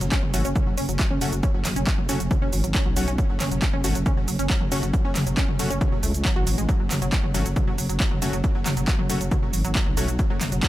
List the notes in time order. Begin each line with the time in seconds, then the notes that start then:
0.01 F#1 F#3, closed hi-hat, shaker
0.12 C#4, kick, clap, closed hi-hat, shaker
0.23 F#1 F#3, mid tom
0.34 G#1 F#3 A3 C#4 F#4, open hi-hat, shaker
0.45 F#1 C#4, closed hi-hat, shaker
0.56 F#3, kick, closed hi-hat, mid tom, shaker
0.67 F#1 F#3
0.77 F#1 C#4, open hi-hat, shaker
0.89 F#1 F#3, closed hi-hat, shaker
0.99 F#3, kick, clap, closed hi-hat, shaker
1.11 F#1 C#4, mid tom
1.21 F#1 F#3 A3 C#4 F#4, open hi-hat, shaker
1.32 F#1 F#3, closed hi-hat, shaker
1.43 C#4, kick, closed hi-hat, shaker
1.54 F#1 F#3
1.65 F#1 F#3, clap, open hi-hat, mid tom, shaker
1.76 F#1 C#4, closed hi-hat, shaker
1.87 F#3, kick, clap, closed hi-hat, shaker
1.98 F#1 F#3, mid tom
2.09 F#1 A3 C#4 F#4, open hi-hat, shaker
2.20 F#1 F#3, closed hi-hat, shaker
2.31 F#3, kick, closed hi-hat, mid tom, shaker
2.42 F#1 C#4
2.53 G#1 F#3, open hi-hat, shaker
2.64 G#1 F#3, closed hi-hat, shaker
2.75 C#4, kick, clap, closed hi-hat, shaker
2.86 B1 F#3, mid tom
2.96 B1 F#3 A3 C#4 F#4, open hi-hat, shaker
3.08 B1 C#4, closed hi-hat, shaker
3.18 F#3, kick, closed hi-hat, shaker
3.30 F#1 F#3
3.40 F#1 C#4, clap, open hi-hat, mid tom, shaker
3.52 F#1 F#3, closed hi-hat, shaker
3.62 F#3, kick, clap, closed hi-hat, shaker
3.73 F#1 C#4, mid tom
3.84 G#1 F#3 A3 C#4 F#4, open hi-hat, shaker
3.95 F#1 F#3, closed hi-hat, shaker
4.06 C#4, kick, closed hi-hat, mid tom, shaker
4.17 F#1 F#3
4.28 F#1 F#3, open hi-hat, shaker
4.39 F#1 C#4, closed hi-hat, shaker
4.50 F#3, kick, clap, closed hi-hat, shaker
4.61 F#1 F#3, mid tom
4.72 F#1 A3 C#4 F#4, open hi-hat, shaker
4.83 F#1 F#3, closed hi-hat, shaker
4.93 F#3, kick, closed hi-hat, shaker
5.05 F#1 C#4
5.15 F#1 F#3, clap, open hi-hat, mid tom, shaker
5.27 F#1 F#3, closed hi-hat, shaker
5.37 C#4, kick, clap, closed hi-hat, shaker
5.48 F#1 F#3, mid tom
5.59 F#1 F#3 A3 C#4 F#4, open hi-hat, shaker
5.70 F#1 C#4, closed hi-hat, shaker
5.81 F#3, kick, closed hi-hat, mid tom, shaker
5.92 F#1 F#3
6.03 C#2 A3, open hi-hat, shaker
6.14 C#2, closed hi-hat, shaker
6.25 F#3, kick, clap, closed hi-hat, shaker
6.36 A1 F#4, mid tom
6.47 A1 F#3, open hi-hat, shaker
6.58 A1 G#3, closed hi-hat, shaker
6.69 F#3, kick, closed hi-hat, shaker
6.80 F#1 F#3
6.91 F#1 F#3, clap, open hi-hat, mid tom, shaker
7.02 F#1 F#3, closed hi-hat, shaker
7.12 F#3, kick, clap, closed hi-hat, shaker
7.24 F#1 F#3, mid tom
7.34 G#1 F#3 A3 C#4 F#4, open hi-hat, shaker
7.46 F#1 F#3, closed hi-hat, shaker
7.56 F#3, kick, closed hi-hat, mid tom, shaker
7.67 F#1 F#3
7.78 F#1 F#3, open hi-hat, shaker
7.89 F#1 F#3, closed hi-hat, shaker
8.00 F#3, kick, clap, closed hi-hat, shaker
8.11 F#1 F#3, mid tom
8.22 F#1 F#3 A3 C#4 F#4, open hi-hat, shaker
8.33 F#1 F#3, closed hi-hat, shaker
8.44 F#3, kick, closed hi-hat, shaker
8.55 F#1 F#3
8.66 F#1 F#3, clap, open hi-hat, mid tom, shaker
8.77 F#1 F#3, closed hi-hat, shaker
8.88 F#3, kick, clap, closed hi-hat, shaker
8.99 F#1 F#3, mid tom
9.09 F#1 F#3 A3 C#4 F#4, open hi-hat, shaker
9.21 F#1 F#3, closed hi-hat, shaker
9.31 F#3, kick, closed hi-hat, mid tom, shaker
9.43 F#1 F#3
9.53 G#1 F#3, open hi-hat, shaker
9.65 G#1 F#3, closed hi-hat, shaker
9.75 F#3, kick, clap, closed hi-hat, shaker
9.86 B1 F#3, mid tom
9.97 B1 F#3 A3 C#4 F#4, open hi-hat, shaker
10.08 B1 F#3, closed hi-hat, shaker
10.19 F#3, kick, closed hi-hat, shaker
10.30 F#1 F#3
10.41 F#1 F#3, clap, open hi-hat, mid tom, shaker
10.52 F#1 F#3, closed hi-hat, shaker
10.63 F#3, kick, clap, closed hi-hat, shaker